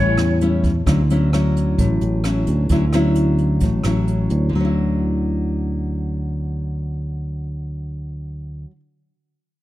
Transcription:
Already playing: A1 A2 G3 C#4 E4 C#5
0.17 E2, cross-stick, closed hi-hat
0.41 G3 C#4 E4, closed hi-hat
0.64 kick, closed hi-hat
0.86 D2 D3 F#3 C#4 E4, kick, cross-stick, closed hi-hat
1.10 F#3 C#4 E4, closed hi-hat
1.33 F#3 C#4 E4, cross-stick, closed hi-hat
1.56 closed hi-hat
1.78 A1 A2, kick, closed hi-hat
2.01 A1, closed hi-hat
2.24 F#3 C#4 E4, cross-stick, closed hi-hat
2.47 D2, closed hi-hat
2.69 D2 D3 F#3 C#4 E4, kick, closed hi-hat
2.93 F#3 C#4 E4, cross-stick, closed hi-hat
3.15 closed hi-hat
3.38 closed hi-hat
3.60 A1 A2, kick, closed hi-hat
3.84 A1 F#3 C#4 E4, cross-stick, closed hi-hat
4.08 closed hi-hat
4.30 D2, closed hi-hat
4.49 D2 D3
4.55 F#3
4.60 C#4
4.65 E4

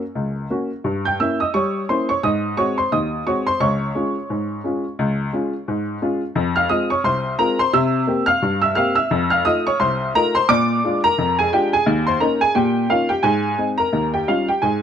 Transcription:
Already playing: A#4 A#5
0.15 C#2
0.50 A#3 C#4 F#4
0.84 G2
1.05 G5 G6
1.20 A#3 C#4 E4 E5 E6
1.40 D#5 D#6
1.54 G3 C#5 C#6
1.89 A#3 C#4 E4 C5 C6
2.09 C#5 C#6
2.23 G#2 D#5 D#6
2.57 G#3 C4 F#4 C#5 C#6
2.78 C5 C6
2.92 D#2 D#5 D#6
3.27 G#3 C4 F#4 C#5 C#6
3.47 C5 C6
3.60 C#2 C#5 C#6
3.95 G#3 C#4 F4
4.30 G#2
4.64 G#3 C#4 F4
4.99 C#2
5.33 G#3 C#4 F4
5.68 G#2
6.02 G#3 C#4 F4
6.35 F2
6.56 F5 F6
6.69 G#3 C4 F4 D#5 D#6
6.90 C#5 C#6
7.04 C2 C5 C6
7.39 G#3 C4 F4 A#4 A#5
7.59 C5 C6
7.73 C3 E5 E6
8.07 A#3 C4 G4
8.26 F5 F6
8.42 G2
8.62 E5 E6
8.75 A#3 C4 G4 F5 F6
8.95 E5 E6
9.11 F2
9.30 F5 F6
9.45 A3 D#4 F4 D#5 D#6
9.67 C#5 C#6
9.80 C2 C5 C6
10.15 A3 D#4 F4 A#4 A#5
10.35 C5 C6
10.49 A#2 D5 D6
10.84 G#3 D4 F4
11.04 A#4 A#5
11.18 F2
11.39 G#4 G#5
11.53 G#3 D4 F4 G4 G5
11.73 G#4 G#5
11.86 D#2
12.07 C5 C6
12.20 A#3 C#4 D#4 A#4 A#5
12.41 G#4 G#5
12.55 A#2 G4 G5
12.90 A#3 C#4 D#4 F4 F5
13.09 G4 G5
13.23 G#2 G#4 G#5
13.58 G#3 C4 D#4
13.78 A#4 A#5
13.93 D#2
14.14 G4 G5
14.28 G3 C#4 D#4 F4 F5
14.48 G4 G5
14.62 G#2 G#4 G#5

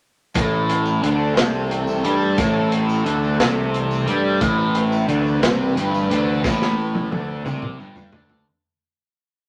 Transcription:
0.34 A1 A2 E3 A3 C4 A4, kick, closed hi-hat, tambourine
0.69 closed hi-hat
0.85 tambourine
1.02 D2 D3, closed hi-hat
1.20 tambourine
1.36 C2 C3, snare, closed hi-hat, tambourine
1.71 closed hi-hat
1.87 tambourine
2.04 G2 G3, closed hi-hat
2.38 A1 A2, kick, closed hi-hat, tambourine
2.72 closed hi-hat
2.89 tambourine
3.05 D2 D3, closed hi-hat
3.23 tambourine
3.39 C2 C3, snare, closed hi-hat, tambourine
3.74 closed hi-hat
3.91 tambourine
4.06 G2 G3, closed hi-hat
4.41 A1 A2 B4, kick, closed hi-hat, tambourine
4.75 closed hi-hat
4.92 tambourine
5.08 D2 D3, closed hi-hat
5.26 tambourine
5.42 C2 C3, snare, closed hi-hat, tambourine
5.75 G1 G2, closed hi-hat
5.94 tambourine
6.09 D2 D3, closed hi-hat
6.43 A1 A2, kick, snare, tambourine
6.62 snare
6.79 tambourine
6.95 high tom
7.11 D2 D3, high tom
7.44 C2 C3, mid tom, tambourine
7.62 mid tom
7.78 G1 G2, tambourine
7.96 floor tom, tambourine
8.12 D2 D3, floor tom, tambourine
8.30 floor tom

